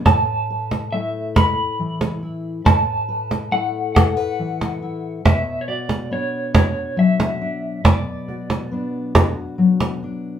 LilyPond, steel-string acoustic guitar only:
\new Staff \with { instrumentName = "Steel-string acoustic guitar" } { \time 6/8 \key b \dorian \tempo 4. = 46 << { b'8 b'8 e'8 b'4 e'8 | b'8 b'8 e'8 a'16 b'8. e'8 | cis''8 fis'8 d'8 fis'4 d'8 | b'8 fis'8 d'8 fis'4 d'8 | } \\ { a,4 a4 e4 | a,4 a4 e4 | b,4 b4 fis4 | b,4 b4 fis4 | } >> }